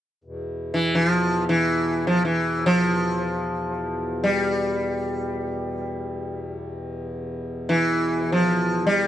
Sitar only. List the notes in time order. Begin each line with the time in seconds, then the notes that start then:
0.74 E3
0.95 E3
1.07 F3
1.49 E3
2.07 F3
2.25 E3
2.66 F3
4.24 G3
7.69 E3
8.32 F3
8.87 G3